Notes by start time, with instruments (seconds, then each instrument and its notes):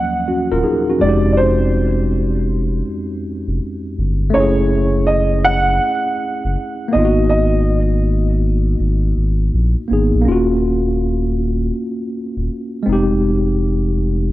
Already playing: tine electric piano D#2 F3 F#3 A#3 C#4, upright piano F#5
0.28 tine electric piano C#4 F#4
0.52 sub bass D#1, tine electric piano F4 A#4
0.64 tine electric piano D#4 G#4
0.89 tine electric piano C#4 F#4
0.99 sub bass F1, tine electric piano F2 G#3, upright piano D5
1.04 tine electric piano C4 D#4
1.08 tine electric piano G4
1.32 upright piano D5
1.37 upright piano C5
3.48 sub bass F1
3.99 sub bass G1
4.30 tine electric piano A3 C#4, upright piano C#5
4.36 sub bass F#1, tine electric piano E4
4.40 tine electric piano G#4
5.07 upright piano D#5
5.45 upright piano F#5
6.45 sub bass F#1
6.88 tine electric piano A#3 B3
6.92 sub bass G#1, tine electric piano D#4, upright piano D#5
6.98 tine electric piano F4
7.04 tine electric piano F#4
7.29 upright piano D#5
8.80 sub bass G#1
9.17 sub bass G#1
9.54 sub bass A#1
9.88 sub bass G#1, tine electric piano A#3 B3 D#4
9.93 tine electric piano G#4
10.15 sub bass A#1
10.22 tine electric piano A#3 C#4
10.28 sub bass D#1, tine electric piano F4 F#4
12.37 sub bass D#1
12.83 tine electric piano G#3 C4
12.87 sub bass F1, tine electric piano D#4
12.92 tine electric piano G4